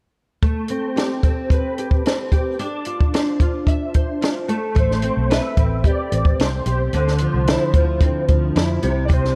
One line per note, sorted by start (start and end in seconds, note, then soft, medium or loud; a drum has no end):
0.42 3.93 A3 medium
0.42 kick medium
0.42 closed hi-hat medium
0.68 1.23 C4 medium
0.68 closed hi-hat medium
0.96 1.77 G4 medium
0.96 snare loud
0.96 closed hi-hat medium
1.23 2.05 C4 soft
1.23 kick medium
1.23 closed hi-hat medium
1.50 2.65 B4 medium
1.50 kick medium
1.50 closed hi-hat medium
1.78 2.31 G4 soft
1.78 closed hi-hat medium
1.91 kick medium
2.06 2.59 C4 soft
2.06 snare medium
2.06 closed hi-hat medium
2.32 2.65 G4 soft
2.32 kick medium
2.32 closed hi-hat medium
2.59 4.54 D4 medium
2.59 closed hi-hat medium
2.85 3.40 F4 medium
2.85 closed hi-hat medium
3.01 kick medium
3.13 3.94 C5 medium
3.13 snare loud
3.13 closed hi-hat medium
3.40 4.20 F4 medium
3.40 kick medium
3.40 closed hi-hat medium
3.67 5.30 E5 medium
3.67 kick medium
3.67 closed hi-hat medium
3.94 5.33 C5 medium
3.94 kick medium
3.94 closed hi-hat medium
4.21 4.54 F4 soft
4.21 snare medium
4.21 closed hi-hat medium
4.48 4.75 A3 medium
4.48 closed hi-hat medium
4.75 5.09 A1 medium
4.75 7.21 A3 medium
4.75 5.35 C5 medium
4.75 kick loud
4.75 closed hi-hat medium
4.91 snare soft
5.02 5.57 C4 medium
5.02 closed hi-hat medium
5.17 5.38 B1 medium
5.30 6.39 B4 medium
5.30 5.86 E5 loud
5.30 snare loud
5.30 closed hi-hat medium
5.57 5.90 A1 medium
5.57 6.11 C4 medium
5.57 kick medium
5.57 closed hi-hat medium
5.84 6.65 G4 medium
5.84 6.42 D5 medium
5.84 kick medium
5.84 closed hi-hat medium
6.12 6.33 A1 medium
6.12 8.01 C4 medium
6.12 closed hi-hat medium
6.25 kick medium
6.39 6.61 C2 medium
6.39 6.94 C5 loud
6.39 snare loud
6.39 closed hi-hat medium
6.66 6.88 B1 medium
6.66 6.99 G4 medium
6.66 closed hi-hat medium
6.93 7.26 D2 medium
6.93 8.82 D3 medium
6.93 8.80 C5 medium
6.93 closed hi-hat medium
7.08 snare soft
7.18 7.74 F3 medium
7.18 closed hi-hat medium
7.34 7.56 C2 medium
7.47 8.55 E4 medium
7.47 snare loud
7.47 closed hi-hat medium
7.74 8.07 D2 medium
7.74 8.27 F3 medium
7.74 kick medium
7.74 closed hi-hat medium
8.01 9.35 C4 medium
8.01 kick medium
8.01 closed hi-hat medium
8.28 8.50 D2 medium
8.28 8.88 F3 medium
8.28 kick medium
8.28 closed hi-hat medium
8.55 8.77 F2 medium
8.55 9.35 E4 medium
8.55 snare medium
8.55 closed hi-hat medium
8.82 9.35 C2 medium
8.82 9.07 C3 medium
8.82 closed hi-hat medium
9.05 9.35 C3 medium
9.05 9.14 D5 medium
9.10 9.35 C5 medium
9.10 kick loud
9.10 closed hi-hat medium
9.25 snare soft